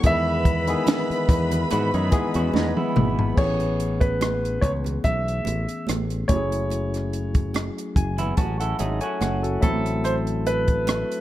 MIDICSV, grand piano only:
0, 0, Header, 1, 2, 480
1, 0, Start_track
1, 0, Tempo, 834492
1, 21, Time_signature, 4, 2, 24, 8
1, 6446, End_track
2, 0, Start_track
2, 0, Title_t, "Grand piano"
2, 0, Program_c, 0, 0
2, 36, Note_on_c, 0, 76, 99
2, 1444, Note_off_c, 0, 76, 0
2, 1942, Note_on_c, 0, 73, 81
2, 2304, Note_on_c, 0, 71, 71
2, 2321, Note_off_c, 0, 73, 0
2, 2654, Note_on_c, 0, 73, 76
2, 2667, Note_off_c, 0, 71, 0
2, 2709, Note_off_c, 0, 73, 0
2, 2900, Note_on_c, 0, 76, 89
2, 3356, Note_off_c, 0, 76, 0
2, 3612, Note_on_c, 0, 73, 87
2, 4313, Note_off_c, 0, 73, 0
2, 5778, Note_on_c, 0, 72, 87
2, 5832, Note_off_c, 0, 72, 0
2, 6021, Note_on_c, 0, 71, 87
2, 6446, Note_off_c, 0, 71, 0
2, 6446, End_track
0, 0, End_of_file